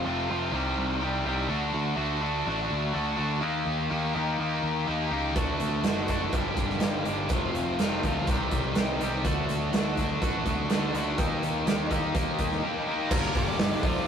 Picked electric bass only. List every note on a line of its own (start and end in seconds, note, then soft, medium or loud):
0.06 0.27 F1 medium
0.30 0.51 F1 medium
0.52 0.74 C2 medium
0.78 0.99 C2 medium
1.02 1.24 C2 medium
1.25 1.47 C2 medium
1.49 1.71 D2 medium
1.73 1.96 D2 medium
1.97 2.42 D2 medium
2.46 2.68 A1 medium
2.71 2.92 D2 medium
2.95 3.16 D2 medium
3.18 3.42 D2 medium
3.42 3.65 D#2 medium
3.66 3.88 D#2 medium
3.91 4.13 D#2 medium
4.15 4.37 D#2 medium
4.39 4.61 D#2 medium
4.62 4.85 D#2 medium
4.88 5.10 D#2 medium
5.11 5.36 C#2 medium
5.36 5.58 D2 medium
5.60 5.82 D2 medium
5.84 6.29 F#1 medium
6.33 6.55 G1 medium
6.57 6.79 G1 medium
6.81 7.03 G1 medium
7.06 7.28 G1 medium
7.30 7.52 F1 medium
7.55 7.77 F1 medium
7.79 8.01 F1 medium
8.03 8.25 D2 medium
8.27 8.49 C2 medium
8.51 8.73 C2 medium
8.76 8.98 C2 medium
9.01 9.25 C2 medium
9.25 9.46 D2 medium
9.49 9.71 D2 medium
9.73 10.17 D2 medium
10.21 10.43 A1 medium
10.45 10.67 D2 medium
10.70 10.91 D2 medium
10.94 11.15 D2 medium
11.18 11.40 D#2 medium
11.43 11.64 D#2 medium
11.66 11.88 D#2 medium
11.91 12.12 D#2 medium
12.14 12.36 D#2 medium
12.39 12.60 D#2 medium
13.11 13.26 G1 loud
13.35 13.50 G1 medium
13.59 13.74 G1 medium
13.83 13.98 F1 medium